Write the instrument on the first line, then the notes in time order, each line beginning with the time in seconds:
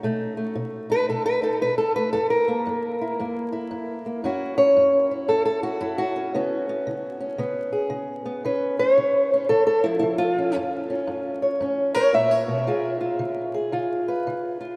steel-string acoustic guitar
Already playing: F#4
0.03 B2 A3 D#4
0.37 A3
0.55 B2
0.90 D#4 B4
1.09 B2 A4
1.26 B4
1.42 D#4 A4
1.61 B2 B4
1.78 A4
1.96 A3 B4
2.13 F#2 A4
2.30 A#4
2.48 A#3
2.67 F#2
3.01 E4
3.19 F#2 A#3
3.52 E4
3.71 F#2
4.06 A#3
4.24 F#2 C#4 E4 F#4
4.58 C#4 C#5
4.76 F#2
5.11 E4
5.28 F#2 A4
5.45 A4
5.63 E4 F#4
5.81 F#2 E4
5.98 F#4
6.16 C#4
6.34 C#3 B3 C#4
6.69 B3
6.87 C#3
7.20 C#4
7.38 C#3 B3
7.72 G#4
7.90 C#3
8.26 B3
8.45 C#3 C#4 B4
8.79 C#5
8.97 C#3
9.34 C#4
9.49 C#3 A4
9.67 A4 B4
9.84 F3 E4
9.99 C#3 E4
10.18 F4
10.38 C#4
10.56 F#2
10.90 C#4
11.07 F#2
11.42 C#5
11.61 F#2 C#4
11.95 A#4 C#5
12.13 A#2 C#5 E5
12.31 C#5
12.48 B2
12.67 C#3 F4 G#4
13.01 F4
13.19 C#3
13.54 G#4
13.72 C#3 F4
14.08 B4
14.27 C#3
14.61 F4